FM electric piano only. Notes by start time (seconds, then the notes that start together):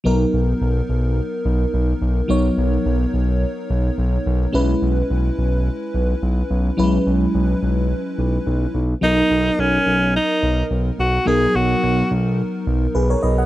0.04 F#3 B3 D#4 A#4
2.28 F#3 B3 D#4 C#5
4.53 G#3 C#4 E4 B4
6.77 F#3 C#4 E4 B4
6.83 G#3
9.01 F#3 B3 D#4 A#4
11.25 F#3 B3 D#4 A#4
12.95 G#4 B4
13.10 A#4 C#5
13.23 B4 D#5
13.38 D#5 F#5